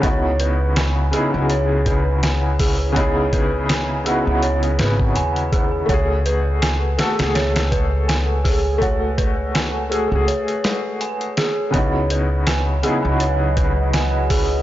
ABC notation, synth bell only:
X:1
M:4/4
L:1/16
Q:"Swing 16ths" 1/4=82
K:C#m
V:1 name="Synth bell"
c z B z g z G2 c z B z g z G2 | c z B z g z G2 c z B z g z G2 | c z B z g z G2 c z B z g z G2 | c z B z g z G2 c z B z g z G2 |
c z B z g z G2 c z B z g z G2 |]